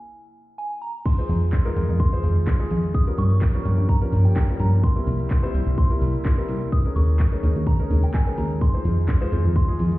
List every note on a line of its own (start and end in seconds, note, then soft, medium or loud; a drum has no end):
0.58 0.80 G#5 medium
0.82 1.04 A#5 loud
1.05 2.93 D#3 medium
1.05 2.93 G#3 medium
1.05 2.93 F4 medium
1.05 1.96 C6 loud
1.05 kick loud
1.05 closed hi-hat medium
1.05 crash loud
1.05 shaker medium
1.18 1.51 G#3 medium
1.18 1.51 D#4 medium
1.18 1.51 F4 medium
1.18 1.51 C5 medium
1.18 closed hi-hat medium
1.18 shaker medium
1.29 1.60 F2 medium
1.29 open hi-hat medium
1.29 shaker soft
1.42 closed hi-hat soft
1.42 shaker medium
1.52 kick loud
1.52 snare medium
1.52 clap loud
1.52 closed hi-hat medium
1.52 shaker medium
1.65 1.98 G#3 loud
1.65 1.98 D#4 medium
1.65 1.98 F4 loud
1.65 1.98 A#4 loud
1.65 closed hi-hat soft
1.65 shaker soft
1.76 1.85 F2 loud
1.76 open hi-hat medium
1.76 shaker medium
1.89 2.12 F2 loud
1.89 closed hi-hat soft
1.89 shaker medium
2.00 2.97 C6 loud
2.00 kick loud
2.00 closed hi-hat medium
2.00 shaker medium
2.12 2.46 G#3 medium
2.12 2.46 D#4 medium
2.12 2.46 F4 medium
2.12 2.46 C5 medium
2.12 closed hi-hat medium
2.12 shaker medium
2.24 2.39 F2 medium
2.24 open hi-hat medium
2.24 shaker medium
2.36 closed hi-hat medium
2.36 shaker medium
2.47 kick loud
2.47 snare loud
2.47 clap loud
2.47 closed hi-hat medium
2.47 shaker medium
2.59 2.93 G#3 medium
2.59 2.93 D#4 medium
2.59 2.93 F4 medium
2.59 2.93 G#4 medium
2.59 closed hi-hat medium
2.59 shaker medium
2.71 3.02 F2 medium
2.71 open hi-hat medium
2.71 shaker medium
2.83 closed hi-hat soft
2.83 shaker medium
2.94 4.81 F3 medium
2.94 6.68 A#3 medium
2.94 4.81 G4 medium
2.94 3.19 D#6 loud
2.94 kick loud
2.94 closed hi-hat medium
2.94 shaker medium
3.07 3.40 G3 medium
3.07 3.40 C#4 medium
3.07 3.40 F4 medium
3.07 3.40 A#4 medium
3.07 closed hi-hat medium
3.07 shaker medium
3.18 3.49 G2 medium
3.18 3.85 C#6 loud
3.18 open hi-hat medium
3.18 shaker medium
3.30 closed hi-hat soft
3.30 shaker medium
3.41 kick loud
3.41 snare medium
3.41 clap loud
3.41 closed hi-hat medium
3.41 shaker medium
3.54 3.87 G3 medium
3.54 3.87 C#4 medium
3.54 3.87 F4 medium
3.54 3.87 A#4 medium
3.54 closed hi-hat soft
3.54 shaker soft
3.65 3.73 G2 loud
3.65 open hi-hat medium
3.65 shaker medium
3.78 4.01 G2 loud
3.78 closed hi-hat medium
3.78 shaker medium
3.89 4.26 A#5 loud
3.89 kick loud
3.89 closed hi-hat medium
3.89 shaker medium
4.01 4.34 G3 medium
4.01 4.35 C#4 medium
4.01 4.35 F4 medium
4.01 4.35 A#4 medium
4.01 closed hi-hat medium
4.01 shaker medium
4.13 4.28 G2 medium
4.13 open hi-hat medium
4.13 shaker medium
4.25 4.35 G5 medium
4.25 closed hi-hat medium
4.25 shaker medium
4.36 4.61 G5 medium
4.36 kick loud
4.36 snare loud
4.36 clap loud
4.36 closed hi-hat medium
4.36 shaker medium
4.49 4.82 G3 medium
4.49 4.82 C#4 medium
4.49 4.82 F4 medium
4.49 4.82 A#4 medium
4.49 closed hi-hat medium
4.49 shaker medium
4.60 4.91 G2 medium
4.60 4.82 A#5 loud
4.60 open hi-hat medium
4.60 shaker medium
4.72 closed hi-hat soft
4.72 shaker medium
4.83 6.71 C3 medium
4.83 6.71 E4 medium
4.83 5.77 C6 loud
4.83 kick loud
4.83 closed hi-hat medium
4.83 shaker medium
4.96 5.29 G3 medium
4.96 5.29 C4 medium
4.96 5.29 E4 medium
4.96 5.29 A#4 medium
4.96 closed hi-hat medium
4.96 shaker medium
5.07 5.38 C2 medium
5.07 open hi-hat medium
5.07 shaker soft
5.19 closed hi-hat soft
5.19 shaker medium
5.30 kick loud
5.30 snare medium
5.30 clap loud
5.30 closed hi-hat medium
5.30 shaker medium
5.43 5.76 G3 loud
5.43 5.76 C4 medium
5.43 5.76 E4 medium
5.43 5.76 C5 loud
5.43 closed hi-hat soft
5.43 shaker soft
5.54 5.63 C2 loud
5.54 open hi-hat medium
5.54 shaker medium
5.67 5.90 C2 loud
5.67 closed hi-hat soft
5.67 shaker medium
5.78 6.75 C6 loud
5.78 kick loud
5.78 closed hi-hat medium
5.78 shaker medium
5.90 6.23 G3 medium
5.90 6.23 C4 medium
5.90 6.24 E4 medium
5.90 6.24 A#4 medium
5.90 closed hi-hat medium
5.90 shaker medium
6.01 6.17 C2 medium
6.01 open hi-hat medium
6.01 shaker medium
6.14 closed hi-hat medium
6.14 shaker medium
6.25 kick loud
6.25 snare loud
6.25 clap loud
6.25 closed hi-hat medium
6.25 shaker medium
6.37 6.71 G3 medium
6.37 6.71 C4 medium
6.37 6.71 E4 medium
6.37 6.71 A#4 medium
6.37 closed hi-hat medium
6.37 shaker medium
6.48 6.80 C2 medium
6.48 open hi-hat medium
6.48 shaker medium
6.61 closed hi-hat soft
6.61 shaker medium
6.72 8.60 C#3 medium
6.72 9.98 G#3 medium
6.72 8.60 D#4 medium
6.72 6.97 D#6 loud
6.72 kick loud
6.72 closed hi-hat medium
6.72 shaker medium
6.85 7.18 G#3 medium
6.85 7.18 C#4 medium
6.85 7.18 D#4 medium
6.85 7.18 A#4 medium
6.85 closed hi-hat medium
6.85 shaker medium
6.96 7.27 D#2 medium
6.96 7.69 C#6 loud
6.96 open hi-hat medium
6.96 shaker soft
7.08 closed hi-hat soft
7.08 shaker medium
7.19 kick loud
7.19 snare medium
7.19 clap loud
7.19 closed hi-hat medium
7.19 shaker medium
7.32 7.65 G#3 medium
7.32 7.65 C#4 medium
7.32 7.65 D#4 medium
7.32 7.65 A#4 medium
7.32 closed hi-hat soft
7.32 shaker soft
7.43 7.52 D#2 loud
7.43 open hi-hat medium
7.43 shaker medium
7.56 7.79 D#2 loud
7.56 closed hi-hat soft
7.56 shaker medium
7.67 8.04 A#5 medium
7.67 kick loud
7.67 closed hi-hat medium
7.67 shaker medium
7.79 8.12 G#3 medium
7.79 8.12 C#4 medium
7.79 8.13 D#4 medium
7.79 8.13 A#4 medium
7.79 closed hi-hat medium
7.79 shaker medium
7.90 8.06 D#2 medium
7.90 open hi-hat medium
7.90 shaker medium
8.03 8.15 G5 medium
8.03 closed hi-hat medium
8.03 shaker medium
8.14 8.38 G#5 medium
8.14 kick loud
8.14 snare medium
8.14 clap loud
8.14 closed hi-hat medium
8.26 8.60 G#3 medium
8.26 8.60 C#4 medium
8.26 8.60 D#4 medium
8.26 8.60 A#4 medium
8.26 closed hi-hat medium
8.26 shaker medium
8.38 8.69 D#2 medium
8.38 8.48 A#5 medium
8.38 open hi-hat medium
8.38 shaker medium
8.50 closed hi-hat soft
8.50 shaker medium
8.61 9.98 D#3 medium
8.61 9.98 F4 medium
8.61 9.55 C6 loud
8.61 kick loud
8.61 closed hi-hat medium
8.61 shaker medium
8.74 9.07 G#3 medium
8.74 9.07 D#4 medium
8.74 9.07 F4 medium
8.74 9.07 C5 medium
8.74 closed hi-hat medium
8.74 shaker medium
8.85 9.16 F2 medium
8.85 open hi-hat medium
8.85 shaker medium
8.97 closed hi-hat soft
8.97 shaker medium
9.08 kick loud
9.08 snare medium
9.08 clap loud
9.08 closed hi-hat medium
9.08 shaker medium
9.21 9.54 G#3 loud
9.21 9.54 D#4 medium
9.21 9.54 F4 medium
9.21 9.54 C5 loud
9.21 closed hi-hat soft
9.21 shaker soft
9.32 9.40 F2 loud
9.32 open hi-hat medium
9.32 shaker medium
9.45 9.68 F2 loud
9.45 closed hi-hat medium
9.45 shaker medium
9.56 9.98 C6 loud
9.56 kick loud
9.56 closed hi-hat medium
9.56 shaker medium
9.68 9.98 G#3 medium
9.68 9.98 D#4 medium
9.68 9.98 F4 medium
9.68 9.98 G#4 medium
9.68 closed hi-hat medium
9.68 shaker medium
9.79 9.95 F2 medium
9.79 open hi-hat medium
9.79 shaker medium
9.92 closed hi-hat medium
9.92 shaker medium